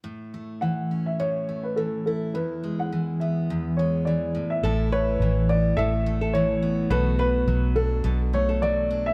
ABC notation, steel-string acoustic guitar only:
X:1
M:4/4
L:1/8
Q:"Swing 16ths" 1/4=105
K:A
V:1 name="Steel-string acoustic guitar" clef=bass
A,, A, E, C A,, A, E, E | E,, G, E, B, E,, G, E, A,, | [A,,E]2 E, B, A,, A, E, B, | [B,,F]2 F, D B,, A, F, D |]